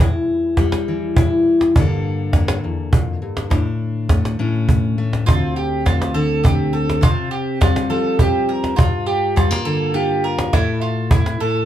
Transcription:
Already playing: G3
0.00 E2 E4
0.57 G3, cajon bass, cajon slap
0.72 cajon slap
0.88 E3
1.17 E4, cajon bass
1.61 cajon slap
1.76 G2 D3 A#3 D4 A4, cajon bass
2.33 A#3, cajon bass, cajon slap
2.48 cajon slap
2.64 E2
2.93 F2, cajon bass
3.22 G2
3.37 cajon slap
3.50 A2 D4, cajon bass, cajon slap
3.65 cajon slap
4.09 A3, cajon bass, cajon slap
4.25 cajon slap
4.39 A2 C#4, cajon slap
4.54 cajon slap
4.69 cajon bass
4.84 cajon slap
4.98 A3
5.13 cajon slap
5.26 D2 C4 F4, cajon bass
5.56 G4
5.86 A3 F4, cajon bass, cajon slap
6.02 cajon slap
6.14 D3 A4
6.44 C4 G4, cajon bass
6.73 A4
6.90 cajon slap
7.01 C3 C4 F4, cajon bass
7.31 G4
7.61 G3 F4, cajon bass, cajon slap
7.76 cajon slap
7.90 F3 A4
8.19 C4 G4, cajon bass
8.49 A#4
8.64 cajon slap
8.76 G2 F4, cajon bass
9.06 G4
9.36 G3 F4, cajon bass, cajon slap
9.51 A#3, cajon slap
9.65 D3 A4
9.94 F4 G4
10.24 A#4
10.38 cajon slap
10.53 A2 E4 A4, cajon bass, cajon slap
10.68 cajon slap
10.82 F4
11.11 E4, cajon bass
11.26 cajon slap
11.40 A2 A4

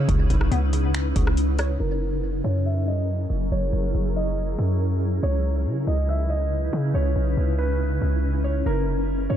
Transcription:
Already playing: C#3 C#4 D#4 E4 B4 C#5
0.09 C#2 C#3, kick, closed hi-hat
0.30 B1, kick, closed hi-hat
0.41 cross-stick
0.51 C#2 B3, closed hi-hat
0.73 C#3, closed hi-hat
0.94 finger snap, closed hi-hat
1.16 C#2 C#3, kick, closed hi-hat
1.27 cross-stick
1.37 closed hi-hat
1.59 C#5, cross-stick, closed hi-hat
1.80 F#1 F#3 C#4 E4 G#4 A#4
2.44 F#2 C#5
2.65 E5
2.88 D#5
3.30 F#1
3.52 F#1 C#5
3.73 F#1
3.95 F#1
4.16 D#5
4.59 F#2
5.23 C#2 C#3 C#4 D#4 B4 C#5
5.66 C#3
5.87 C#2 D#5
6.09 E5
6.30 D#5
6.73 C#3
6.94 C#2 C#5
7.16 B1
7.37 C#2
7.58 B4
8.02 C#2
8.44 C#5
8.66 F#1 F#3 G#4 A#4
9.30 F#2 C#5

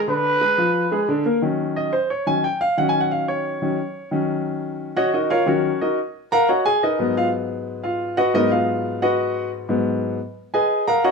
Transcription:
0.08 D3 D4 B4
0.41 G#3 G#4
0.58 F3 F4
0.92 G#3 G#4
1.09 D3 D4
1.25 A#3 A#4
1.42 D#3 F#3 C#4
1.76 D#5
1.93 C5
2.10 C#5
2.27 D#3 F#3 C#4 G#5
2.44 G5
2.61 F5
2.77 D#3 F#3 C#4 F#5
2.89 G#5
3.01 F#5
3.11 F5
3.28 C#5
3.62 D#3 F#3 C#4
4.11 D#3 F#3 C#4
4.97 F#4 C#5 D#5 F#5
5.14 D#4 F#4 A#4 D#5
5.30 F4 A#4 C#5 F5
5.46 D#3 F#3 C#4 F#4 A#4 C#5
5.81 D#4 F#4 A#4 D#5
6.32 A#4 F5 F#5 A#5
6.49 F#4 C#5 D#5 F#5
6.65 G#4 G#5
6.83 D#4 A#4 B4 D#5
6.99 G#2 F#3 B3
7.17 F4 F5
7.84 F4 F5
8.17 F#4 B4 D#5 F#5
8.34 G#2 F#3 B3 D#4 A#4 B4 D#5
8.51 F4 F5
9.02 F#4 B4 D#5 F#5
9.69 G#2 F#3 B3
10.54 G#4 B4 D#5 G#5
10.88 A#4 F5 F#5 A#5
11.04 F#4 C#5 D#5 F#5

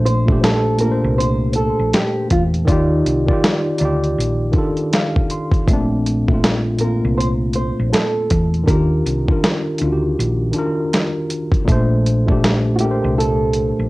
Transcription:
Already playing: A#1 A#2 A3 D4 C5
0.06 C5, closed hi-hat
0.26 A#2 A3, kick
0.30 D4 G4
0.43 A4, snare, closed hi-hat
0.78 A#2 A#3 A#4, closed hi-hat
0.83 D4 A#4
0.92 C5
1.04 C2
1.18 C5, closed hi-hat
1.53 A4, closed hi-hat
1.79 A#1
1.93 G4, snare, closed hi-hat
2.30 E2 F4, kick, closed hi-hat
2.54 closed hi-hat
2.65 D#2 D#3 D#4 D5, kick, closed hi-hat
2.69 F4 G4
3.06 C2, closed hi-hat
3.26 D#3 D5, kick
3.30 F4 G4
3.44 snare, closed hi-hat
3.78 D2 D#4 D5, closed hi-hat
3.83 F4 G4
4.04 closed hi-hat
4.18 A#1, closed hi-hat
4.52 D#3 D4, kick, closed hi-hat
4.56 F4 A4
4.77 closed hi-hat
4.93 F5, snare, closed hi-hat
5.16 kick
5.30 C6, closed hi-hat
5.52 kick, closed hi-hat
5.67 A#1 A#2 A3, kick, closed hi-hat
5.71 C4 D4
6.06 closed hi-hat
6.27 A#2 A3, kick
6.32 C4 F4
6.44 snare, closed hi-hat
6.77 A#2 A#3 A#4, closed hi-hat
6.82 C4 F4
7.04 C2
7.18 C5, closed hi-hat
7.53 C5, closed hi-hat
7.79 A#1
7.93 A4, snare, closed hi-hat
8.30 E2, kick, closed hi-hat
8.54 closed hi-hat
8.64 D#3 D4 A#4
8.68 D#2 F4 G4, kick, closed hi-hat
9.06 C2, closed hi-hat
9.26 D#3 D4, kick
9.30 F4 A#4
9.44 snare, closed hi-hat
9.78 D2 D4 D#4, closed hi-hat
9.83 F4 F#4
9.92 G4
10.19 A#1, closed hi-hat
10.52 D#3 D4, closed hi-hat
10.56 F4 A#4
10.93 snare, closed hi-hat
11.30 closed hi-hat
11.52 kick, closed hi-hat
11.65 A#1 A#2 A3, kick, closed hi-hat
11.70 D4 C5
12.06 closed hi-hat
12.25 A#2 A3, kick
12.30 D4 G4
12.44 snare, closed hi-hat
12.76 A#2 F#4, closed hi-hat
12.80 A3 D4 G4
12.84 A#4
12.91 C5
13.04 C2
13.18 A4, closed hi-hat
13.53 closed hi-hat
13.79 A#1

